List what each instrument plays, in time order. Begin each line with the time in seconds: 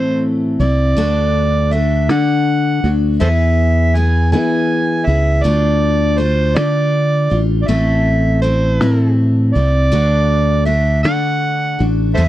Already playing: fingered electric bass A2, steel-string acoustic guitar A2 E3 A3 C4 E4 A4, harmonica C5
0.59 fingered electric bass C2, steel-string acoustic guitar A3 C4 E4 A4, harmonica D5
0.97 fingered electric bass D2, steel-string acoustic guitar D3 A3 D4 F#4 A4
1.71 steel-string acoustic guitar A3 D4 F#4 A4, harmonica E5
2.09 fingered electric bass D3, steel-string acoustic guitar D3 A3 D4 F#4 A4, harmonica F#5
2.84 fingered electric bass D2, steel-string acoustic guitar D4 F#4 A4
3.20 fingered electric bass E2, steel-string acoustic guitar E3 B3 E4 G#4 B4, harmonica A4 C5 E5
3.95 steel-string acoustic guitar B3 E4 G#4 B4, harmonica G#5
4.32 fingered electric bass E3, steel-string acoustic guitar E3 B3 E4 G#4 B4, harmonica G#5
5.06 fingered electric bass C#2, steel-string acoustic guitar E4 G#4 B4, harmonica E5
5.43 fingered electric bass D2, steel-string acoustic guitar D3 A3 D4 F4 A4, harmonica D5
6.18 steel-string acoustic guitar A3 D4 F4 A4, harmonica C5
6.56 fingered electric bass D3, steel-string acoustic guitar D3 A3 D4 F4 A4, harmonica D5
7.30 fingered electric bass A1, steel-string acoustic guitar D4 F4 A4
7.62 harmonica D5
7.68 fingered electric bass A1, steel-string acoustic guitar A2 E3 A3 C4 E4 A4, harmonica E5
8.42 steel-string acoustic guitar A3 C4 E4 A4, harmonica C5
8.81 fingered electric bass A2, steel-string acoustic guitar A2 E3 A3 C4 E4 A4
9.53 fingered electric bass C2, steel-string acoustic guitar A3 C4 E4 A4, harmonica D5
9.92 fingered electric bass D2, steel-string acoustic guitar D3 A3 D4 F#4 A4
10.65 steel-string acoustic guitar A3 D4 F#4 A4, harmonica E5
11.03 fingered electric bass D3, steel-string acoustic guitar D3 A3 D4 F#4 A4, harmonica F#5
11.79 fingered electric bass A1, steel-string acoustic guitar D4 F#4 A4
12.15 fingered electric bass E2, steel-string acoustic guitar E3 B3 E4 G#4 B4, harmonica A4 C5 E5